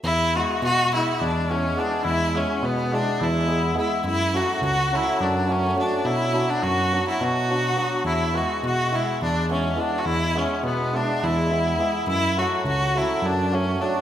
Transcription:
X:1
M:7/8
L:1/16
Q:1/4=105
K:Emix
V:1 name="Trumpet"
E2 F2 F2 E2 D2 C2 D2 | E2 C2 B,2 D2 E4 E2 | E2 F2 F2 E2 D2 C2 D2 | E3 D F3 E F6 |
E2 F2 F2 E2 D2 C2 D3/2 F/2 | E2 C2 B,2 D2 E6 | E2 F2 F2 E2 D2 C2 D2 |]
V:2 name="Violin"
E2 F2 F2 E2 D2 C2 D2 | E2 C2 B,2 D2 E4 E2 | E2 F2 F2 E2 D2 C2 D2 | E3 D F3 E F6 |
E2 F2 F2 E2 D2 C2 D3/2 F/2 | E2 C2 B,2 D2 E6 | E2 F2 F2 E2 D2 C2 D2 |]
V:3 name="Hammered dulcimer"
z2 [G,B,EG]2 z2 [G,B,EG]2 z2 [G,B,EG]2 [G,B,EG]2 | z2 [G,B,EG]2 z2 [G,B,EG]2 z2 [G,B,EG]2 [G,B,EG]2 | z2 [F,A,CF]2 z2 [F,A,CF]2 z2 [F,A,CF]2 [F,A,CF]2 | z2 [F,B,DF]2 z2 [F,B,DF]2 z2 [F,B,DF]2 [F,B,DF]2 |
z2 [E,G,B,E]2 z2 [E,G,B,E]2 z2 [E,G,B,E]2 [E,G,B,E]2 | z2 [E,G,B,E]2 z2 [E,G,B,E]2 z2 [E,G,B,E]2 [E,G,B,E]2 | z2 [F,A,CF]2 z2 [F,A,CF]2 z2 [F,A,CF]2 [F,A,CF]2 |]
V:4 name="Tine electric piano" clef=bass
E,,4 B,,4 E,,6 | E,,4 B,,4 E,,6 | F,,4 C,,4 F,,6 | B,,4 F,,4 B,,6 |
E,,4 B,,4 E,,6 | E,,4 B,,4 E,,6 | F,,4 C,,4 F,,6 |]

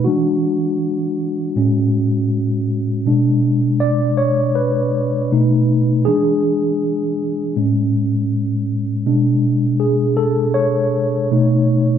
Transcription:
X:1
M:4/4
L:1/8
Q:"Swing 16ths" 1/4=80
K:Bdor
V:1 name="Tine electric piano"
F6 z2 | z2 d c B3 z | G3 z4 z | z2 G A c4 |]
V:2 name="Tine electric piano" clef=bass
[E,G,D] z3 [A,,G,C] z3 | [B,,G,D]3 z3 [B,,A,^D]2 | [E,G,D]3 z [A,,G,C]3 z | [B,,G,D]3 z3 [B,,A,^D] z |]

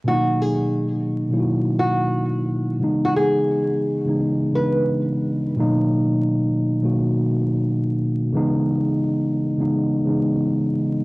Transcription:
X:1
M:4/4
L:1/16
Q:"Swing 16ths" 1/4=87
K:B
V:1 name="Nylon-string guitar"
F2 G3 z4 z F6 | z F G6 z2 B z4 z | z16 | z16 |]
V:2 name="Tine electric piano" clef=bass
[B,,D,F,A,D]4- [B,,D,F,A,D] z2 [B,,D,F,A,EF]4- [B,,D,F,A,EF] z4 | [C,E,G,B,D]4- [C,E,G,B,D] z2 [C,E,G,B,D]2 z [C,E,G,B,=D^D]4 z2 | [B,,D,F,A,D]4- [B,,D,F,A,D] z2 [B,,D,F,A,F]4- [B,,D,F,A,F] z4 | [C,E,G,B,D]4- [C,E,G,B,D] z2 [C,E,G,B,D]2 z [C,E,G,B,D]4 z2 |]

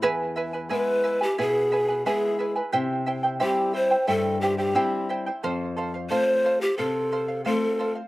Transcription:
X:1
M:4/4
L:1/16
Q:1/4=89
K:Ephr
V:1 name="Charango"
[E^GBe^g]2 [EBeg] [EBg] [EGBeg]2 [EBeg] [EBg] [EGBeg]2 [EBeg] [EBg] [EGBeg]2 [EBeg] [EBg] | [EGceg]2 [Eceg] [Ecg] [EGceg]2 [Eceg] [Ecg] [EGceg]2 [Eceg] [Ecg] [EGceg]2 [Eceg] [Ecg] | [Acf]2 [Acf] [cf] [Acf]2 [Acf] [cf] [Acf]2 [Acf] [cf] [Acf]2 [Acf] [cf] |]
V:2 name="Pan flute"
z4 B3 G ^G4 G3 z | z4 G2 c2 A2 G G3 z2 | z4 c3 G A4 A3 z |]
V:3 name="Nylon-string guitar"
E,,4 [^G,B,E]4 B,,4 [G,B,E]4 | C,4 [G,CE]4 G,,4 [G,CE]4 | F,,4 [A,CF]4 C,4 [A,CF]4 |]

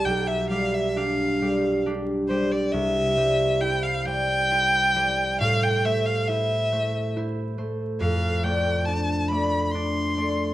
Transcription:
X:1
M:3/4
L:1/16
Q:1/4=68
K:C
V:1 name="Violin"
g e f e f4 z2 c d | e4 g f g6 | f g e f e4 z4 | f2 g2 a2 b2 c'4 |]
V:2 name="Harp"
[B,,,G,G]2 [G,G]2 [DG]2 [G,G]2 [DG]2 [G,G]2 | C,,2 [G,c]2 [Ec]2 [G,c]2 [Ec]2 [G,c]2 | A,,2 [A,c]2 [Ec]2 [A,c]2 [Ec]2 [A,c]2 | F,,2 [A,d]2 [Dd]2 [A,d]2 [Dd]2 [A,d]2 |]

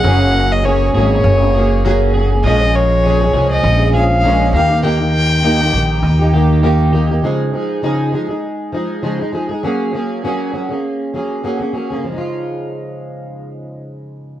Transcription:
X:1
M:4/4
L:1/16
Q:"Swing 16ths" 1/4=100
K:Db
V:1 name="Violin"
g3 e d2 d8 z2 | e2 d4- d e3 f4 f2 | =g12 z4 | z16 |
z16 | z16 |]
V:2 name="Clean electric guitar"
B,2 B,2 D2 A2 D2 A2 B,2 A2 | F,2 B,2 D2 A2 D2 A2 B,2 B,2 | B,2 B,2 E2 =G2 E2 G2 B,2 G2 | z16 |
z16 | z16 |]
V:3 name="Steel-string acoustic guitar"
[G,B,DA]4 [G,B,DA]2 [G,B,DA]3 [B,DA] [G,B,DA]2 [G,B,DA]2 [G,B,DA] [B,DA] | [B,,F,A,DA] [A,DA]3 [B,,F,A,DA] [A,DA] [F,A,DA]3 [A,DA] [F,A,DA]2 [B,,F,A,DA]2 [E,B,E=G] [B,EG] | [E,B,E=G] [B,EG]3 [E,B,EG] [B,EG] [E,B,EG]3 [B,EG] [E,B,EG]2 [E,B,EG]2 [E,B,EG] [B,EG] | [D,F,A,EA]2 [F,A,EA]2 [D,F,A,EA]2 [F,A,EA] [A,EA]3 [F,A,EA]2 [D,F,A,EA] [A,EA] [F,A,EA] [A,EA] |
[G,B,DA]2 [G,B,DA]2 [G,B,DA]2 [G,B,DA] [B,DA]3 [G,B,DA]2 [G,B,DA] [B,DA] [G,B,DA] [B,DA] | [D,F,A,EF]16 |]
V:4 name="Upright bass" clef=bass
G,,,6 A,,,2 G,,,8 | B,,,6 C,,2 B,,,6 E,,2- | E,,6 B,,,2 E,,8 | z16 |
z16 | z16 |]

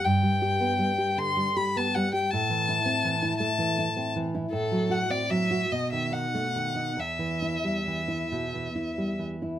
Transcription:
X:1
M:6/8
L:1/16
Q:3/8=52
K:Em
V:1 name="Violin"
g6 c'2 b a f g | a6 a4 z2 | A2 f d e2 ^d e f4 | e8- e2 z2 |]
V:2 name="Nylon-string guitar" clef=bass
G,, G, G B, G, G D, G, G B, G, G | A,, E, E C E, E A, E, E C E, E | A,, F, F C F, F B,, ^D, ^D A, D, D | E,, E, E G, E, E B,, E, E G, E, E |]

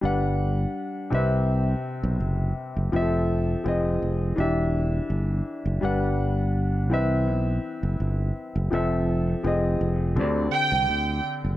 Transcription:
X:1
M:4/4
L:1/16
Q:"Swing 16ths" 1/4=83
K:G
V:1 name="Violin section"
z16 | z16 | z16 | z8 z2 g4 z2 |]
V:2 name="Grand piano"
[G,DBf]6 [C,CBe]6- [C,CBe] z3 | [=F,CGAe]4 [F,C_A_e]4 [=E,DG=e]6- [E,DGe] z | [G,DBf]6 [E,CBe]6- [E,CBe] z3 | [=F,CAe]4 [F,C_A_e]4 [D,CGd]6- [D,CGd] z |]
V:3 name="Fingered electric bass" clef=bass
G,,,4 z2 C,,4 z B,,, F,,,2 z F,,, | =F,,,4 F,,,2 F,,,2 E,,,4 G,,,2 z ^F,,, | G,,,6 C,,2 B,,,2 z F,,, G,,,2 z F,,, | =F,,,4 F,,,2 F,,,2 D,,2 z C,, D,,2 z ^F,,, |]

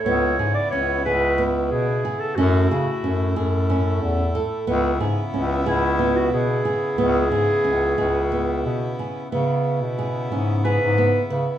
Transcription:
X:1
M:7/8
L:1/16
Q:1/4=91
K:C#m
V:1 name="Clarinet"
c3 =d c2 B2 z2 G3 A | F8 z6 | z6 E3 F G4 | G12 z2 |
z8 B4 z2 |]
V:2 name="Nylon-string guitar"
B,2 G2 C2 G2 B,4 G2 | C2 G2 C2 G2 C4 A2 | B,2 G2 C2 G2 B,4 G2 | B,2 G2 C2 G2 B,4 G2 |
B,4 G2 C2 G2 B,2 B2 |]
V:3 name="Harmonium"
[B,E]12- [B,E]2 | [A,E]12- [A,E]2 | [B,E]12- [B,E]2- | [B,E]12- [B,E]2 |
[B,E]12- [B,E]2 |]
V:4 name="Harmonium" clef=bass
C,12- C,2 | A,,12- A,,2 | C,12- C,2 | C,12- C,2 |
C,12- C,2 |]
V:5 name="Bass clarinet" clef=bass
C,,2 G,, z C,,2 C,,4 B,,2 z2 | F,,2 C, z F,,2 F,,4 E,,2 z2 | C,,2 G,, z C,,2 C,,4 B,,2 z2 | C,,2 G,, z C,,2 C,,4 B,,2 z2 |
C,3 B,,3 G,,3 G,,2 z C, z |]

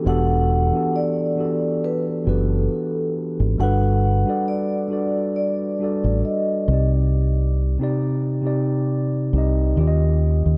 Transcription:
X:1
M:4/4
L:1/16
Q:"Swing 16ths" 1/4=68
K:Em
V:1 name="Vibraphone"
f4 d4 B2 A4 z2 | f4 d4 d4 _e3 z | z16 |]
V:2 name="Tine electric piano"
[E,B,DFGA]2 z [E,B,DFGA]2 z [E,B,DFGA]3 z [E,B,DFGB]4 z2 | [G,DFAB]2 z [G,DFAd]2 z [G,DFAd]3 z [G,DFAd]3 z [C,C_EGd]2- | [C,C_EGd]2 z [C,CEGd]2 z [C,CEGd]3 z [C,CEG_e]2 [_E,_D=FG=de]3 z |]
V:3 name="Fingered electric bass" clef=bass
E,,,3 z6 z F,,,2 z3 _A,,, | G,,,3 z8 A,,, z2 C,,2- | C,,3 z6 z C,,2 _E,,3 E,, |]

